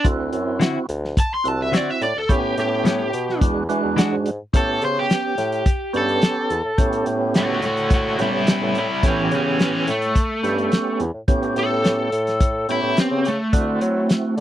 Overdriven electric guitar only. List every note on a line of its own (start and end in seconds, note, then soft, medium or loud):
1.20 1.32 A5 medium
1.34 1.48 C6 medium
1.48 1.60 A5 medium
1.62 1.76 E5 medium
1.76 1.90 D5 medium
1.90 2.02 E5 medium
2.03 2.16 D5 medium
2.18 2.32 A4 medium
2.32 2.58 G4 medium
2.60 3.40 G4 medium
4.57 4.82 A4 medium
4.85 4.97 C5 medium
4.99 5.92 G4 medium
5.97 7.04 A4 medium
7.37 7.64 A3 medium
7.37 7.63 F#4 medium
7.65 7.90 A3 medium
7.65 7.91 F#4 medium
7.94 8.18 A3 medium
7.94 8.20 F#4 medium
8.21 8.46 G3 medium
8.21 8.48 E4 medium
8.50 8.74 G3 medium
8.50 8.76 E4 medium
8.78 9.03 G3 medium
8.78 9.04 E4 medium
9.06 9.31 E3 medium
9.06 9.32 C#4 medium
9.34 9.59 E3 medium
9.34 9.60 C#4 medium
9.62 9.87 E3 medium
9.62 9.88 C#4 medium
9.90 10.98 A3 medium
11.59 12.67 A4 medium
12.72 12.97 E4 medium
13.00 13.26 C4 medium
13.28 14.40 A3 medium